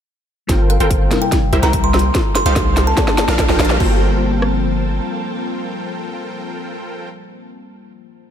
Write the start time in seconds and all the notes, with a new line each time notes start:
0.47 G1 C3 G3 A#3 F4 A4 A#4 C5 G5, kick, snare, closed hi-hat, riser
0.70 F5, closed hi-hat
0.80 G1 F4 A4 A#4 C5 G5, closed hi-hat
0.91 kick, closed hi-hat
1.09 C3 G3 E4, snare, closed hi-hat
1.13 A#4
1.22 G5
1.32 kick, snare, closed hi-hat
1.53 C2 E4 G4 A#4 C5 E5, closed hi-hat
1.63 C2 E4 G4 A#4 C5 G5 A#5, snare, closed hi-hat
1.73 kick, closed hi-hat
1.84 C6
1.94 snare, closed hi-hat, high woodblock
1.99 closed hi-hat
2.13 D#3 D#4 F4 A4, kick, snare, closed hi-hat
2.17 A4
2.35 C6, snare, closed hi-hat
2.46 C2 D#4 G4 A4 C5 F5 C6, closed hi-hat
2.56 kick, snare, closed hi-hat
2.77 snare, closed hi-hat
2.87 A5
2.95 D3 A#3 F4 A4 D5, kick, snare, closed hi-hat
3.08 snare
3.18 snare, closed hi-hat
3.28 A#1 D4 F4 A4 A#4 F5, snare, closed hi-hat
3.39 kick, snare, closed hi-hat
3.49 A#1 D4 F4 A4 A#4 G5, snare
3.59 A#1 D4 F4 A4 A#4 F5, snare, closed hi-hat
3.65 closed hi-hat
3.70 snare
3.77 G1 F3 G3 A#3 C4 F4 A4 A#4 C5 G5 A5, kick, crash
3.82 A#3 C5
4.42 cross-stick